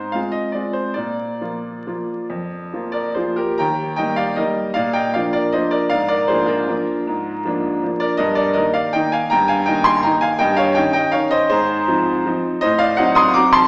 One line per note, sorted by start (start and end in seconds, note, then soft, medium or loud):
0.00 0.13 G#2 medium
0.00 0.13 C5 medium
0.12 0.50 G#3 soft
0.12 0.50 C4 soft
0.12 0.51 F4 soft
0.12 0.33 F5 medium
0.32 0.53 D#5 medium
0.52 0.93 G#3 soft
0.52 0.93 C4 soft
0.52 0.93 F4 soft
0.52 0.74 D5 medium
0.73 0.96 C5 medium
0.94 1.40 A#2 soft
0.94 2.90 D5 medium
1.41 1.83 F3 soft
1.41 1.83 A#3 soft
1.41 1.83 F4 soft
1.87 2.26 F3 soft
1.87 2.26 A#3 soft
1.87 2.26 F4 soft
2.30 2.71 F2 soft
2.73 3.13 F3 soft
2.73 3.13 A#3 soft
2.73 3.13 F4 soft
2.92 3.14 A#4 medium
2.92 3.15 D5 medium
3.15 3.55 F3 soft
3.15 3.55 A#3 soft
3.15 3.56 F4 soft
3.15 3.36 G#4 soft
3.15 3.37 C5 medium
3.36 3.57 G4 soft
3.36 3.58 A#4 medium
3.58 3.98 D#2 medium
3.58 3.95 G5 medium
3.58 3.98 A#5 medium
3.96 4.34 G3 soft
3.96 4.35 A#3 soft
3.96 4.35 D#4 soft
3.96 4.17 D#5 medium
3.96 4.17 G5 medium
4.16 4.36 D5 medium
4.16 4.37 F5 medium
4.36 4.73 G3 soft
4.36 4.73 A#3 soft
4.36 4.73 D#4 soft
4.36 4.73 A#4 medium
4.36 4.75 D#5 medium
4.74 5.14 A#2 medium
4.74 4.94 D5 medium
4.74 4.94 F5 medium
4.93 5.13 D#5 medium
4.93 5.14 G5 medium
5.14 5.51 F3 soft
5.14 5.51 A#3 soft
5.14 5.51 D4 soft
5.14 5.31 D5 medium
5.14 5.34 F5 medium
5.33 5.52 A#4 medium
5.33 5.53 D5 medium
5.52 5.89 F3 soft
5.52 5.89 A#3 soft
5.52 5.89 D4 soft
5.52 5.72 C5 soft
5.52 5.73 D#5 medium
5.71 5.90 A#4 medium
5.71 5.89 D5 medium
5.89 6.29 G#2 medium
5.89 6.07 D5 medium
5.89 6.10 F5 medium
6.08 6.28 A#4 medium
6.08 6.29 D5 medium
6.28 6.65 F3 soft
6.28 6.65 A#3 soft
6.28 6.65 D4 soft
6.28 6.47 G#4 medium
6.28 6.48 C5 medium
6.46 7.60 F4 medium
6.46 7.63 A#4 medium
6.68 7.03 F3 soft
6.68 7.03 A#3 soft
6.68 7.03 D4 soft
7.07 7.44 G#2 medium
7.45 7.80 F3 soft
7.45 7.80 A#3 soft
7.45 7.80 D4 medium
7.83 8.16 F3 soft
7.83 8.17 A#3 soft
7.83 8.17 D4 soft
8.00 8.17 A#4 medium
8.00 8.19 D5 medium
8.17 8.55 G2 medium
8.17 8.35 A#4 medium
8.17 8.37 D#5 medium
8.35 8.53 A#4 medium
8.35 8.55 D5 medium
8.54 8.92 D#3 soft
8.54 8.92 A#3 soft
8.54 8.92 D#4 medium
8.54 8.74 A#4 medium
8.54 8.75 D#5 medium
8.74 8.94 D5 medium
8.74 8.95 F5 medium
8.93 9.29 D#3 soft
8.93 9.29 A#3 soft
8.93 9.29 D#4 medium
8.93 9.13 D#5 medium
8.93 9.13 G5 medium
9.12 9.31 F5 medium
9.12 9.31 G#5 medium
9.30 9.67 G2 medium
9.30 9.48 G5 medium
9.30 9.49 A#5 loud
9.48 9.66 F5 medium
9.48 9.67 G#5 loud
9.66 10.02 D#3 soft
9.66 10.02 A#3 soft
9.66 10.02 D#4 medium
9.66 9.85 D#5 medium
9.66 9.85 G5 medium
9.84 10.04 G#5 medium
9.84 10.04 C6 loud
10.03 10.38 D#3 soft
10.03 10.38 A#3 soft
10.03 10.39 D#4 medium
10.03 10.22 G5 medium
10.03 10.23 A#5 medium
10.21 10.39 F5 medium
10.21 10.40 G#5 loud
10.39 10.76 G2 medium
10.39 10.57 D#5 medium
10.39 10.58 G5 loud
10.56 10.75 C#5 medium
10.56 10.76 F5 medium
10.75 11.10 D#3 soft
10.75 11.11 C#4 soft
10.75 11.11 D#4 medium
10.75 10.93 D#5 medium
10.75 10.92 G5 loud
10.93 11.12 D#5 medium
10.93 11.13 G5 loud
11.12 11.47 D#3 soft
11.12 11.48 C#4 soft
11.12 11.48 D#4 soft
11.12 11.31 C#5 medium
11.12 11.32 F5 medium
11.31 11.48 C5 medium
11.31 11.50 D#5 loud
11.50 11.87 G#2 medium
11.50 12.40 G#4 medium
11.50 12.44 C5 medium
11.88 12.22 F3 medium
11.88 12.22 C4 soft
11.88 12.22 D#4 medium
12.26 12.59 F3 soft
12.26 12.60 C4 soft
12.26 12.60 D#4 medium
12.61 12.98 A2 medium
12.61 12.79 C5 medium
12.61 12.80 D#5 loud
12.79 12.97 D5 medium
12.79 12.98 F5 loud
12.97 13.33 F#3 medium
12.97 13.33 C4 medium
12.97 13.33 D#4 medium
12.97 13.16 D#5 medium
12.97 13.16 F#5 medium
13.15 13.34 C6 medium
13.15 13.35 D#6 loud
13.34 13.68 F#3 medium
13.34 13.68 C4 medium
13.34 13.68 D#4 medium
13.34 13.53 A#5 medium
13.34 13.53 D6 loud
13.53 13.68 A5 medium
13.53 13.68 C6 loud